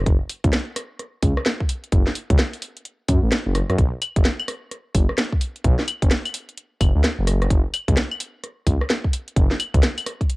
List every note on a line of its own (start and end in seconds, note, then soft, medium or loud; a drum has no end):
0.06 0.17 F#1 loud
0.06 kick loud
0.06 closed hi-hat medium
0.29 open hi-hat loud
0.44 0.50 C#2 medium
0.44 kick loud
0.44 closed hi-hat medium
0.53 snare loud
0.53 closed hi-hat medium
0.76 cross-stick medium
0.76 open hi-hat loud
0.99 cross-stick soft
0.99 closed hi-hat medium
1.22 1.33 C#2 loud
1.22 kick loud
1.22 open hi-hat loud
1.37 cross-stick medium
1.46 snare loud
1.46 closed hi-hat medium
1.60 kick medium
1.69 open hi-hat loud
1.84 closed hi-hat soft
1.92 2.03 F#1 loud
1.92 kick loud
1.92 closed hi-hat medium
2.07 snare medium
2.15 open hi-hat loud
2.30 2.36 C#2 medium
2.30 kick loud
2.30 closed hi-hat medium
2.39 snare loud
2.39 closed hi-hat medium
2.53 open hi-hat medium
2.62 open hi-hat loud
2.77 closed hi-hat soft
2.85 closed hi-hat medium
3.08 3.19 F#2 loud
3.08 kick loud
3.08 open hi-hat loud
3.23 3.29 A1 loud
3.32 snare loud
3.32 closed hi-hat medium
3.46 3.62 F#1 medium
3.55 cross-stick medium
3.55 open hi-hat loud
3.70 3.76 F#2 loud
3.70 cross-stick medium
3.70 closed hi-hat soft
3.78 3.89 B1 loud
3.78 kick loud
3.78 closed hi-hat medium
4.02 open hi-hat loud
4.02 claves medium
4.16 4.22 F#1 medium
4.16 kick loud
4.16 closed hi-hat medium
4.25 snare loud
4.25 closed hi-hat medium
4.39 claves medium
4.48 cross-stick medium
4.48 open hi-hat loud
4.71 cross-stick soft
4.71 closed hi-hat medium
4.95 5.05 F#1 loud
4.95 kick loud
4.95 open hi-hat loud
5.09 cross-stick medium
5.18 snare loud
5.18 closed hi-hat medium
5.32 kick medium
5.41 open hi-hat loud
5.56 closed hi-hat soft
5.64 5.75 B1 loud
5.64 kick loud
5.64 closed hi-hat medium
5.79 snare medium
5.88 open hi-hat loud
5.88 claves medium
6.02 6.08 F#1 medium
6.02 kick loud
6.02 closed hi-hat medium
6.11 snare loud
6.11 closed hi-hat medium
6.25 open hi-hat medium
6.25 claves medium
6.34 open hi-hat loud
6.49 closed hi-hat soft
6.57 closed hi-hat medium
6.81 6.91 F#1 loud
6.81 kick loud
6.81 open hi-hat loud
6.81 claves medium
6.95 7.02 D2 loud
7.04 snare loud
7.04 closed hi-hat medium
7.19 7.47 F#1 medium
7.27 cross-stick medium
7.27 open hi-hat loud
7.42 cross-stick medium
7.42 closed hi-hat soft
7.50 7.61 F#1 loud
7.50 kick loud
7.50 closed hi-hat medium
7.74 open hi-hat loud
7.74 claves medium
7.88 7.94 C#2 medium
7.88 kick loud
7.88 closed hi-hat medium
7.97 snare loud
7.97 closed hi-hat medium
8.11 claves medium
8.20 open hi-hat loud
8.44 cross-stick soft
8.44 closed hi-hat medium
8.67 8.77 C#2 loud
8.67 kick loud
8.67 open hi-hat loud
8.81 cross-stick medium
8.90 snare loud
8.90 closed hi-hat medium
9.04 kick medium
9.13 open hi-hat loud
9.28 closed hi-hat soft
9.36 9.47 F#1 loud
9.36 kick loud
9.36 closed hi-hat medium
9.51 snare medium
9.60 open hi-hat loud
9.60 claves medium
9.74 9.81 C#2 medium
9.74 kick loud
9.74 closed hi-hat medium
9.83 snare loud
9.83 closed hi-hat medium
9.98 open hi-hat medium
9.98 claves medium
10.06 cross-stick medium
10.06 open hi-hat loud
10.21 kick medium
10.21 closed hi-hat soft
10.30 closed hi-hat medium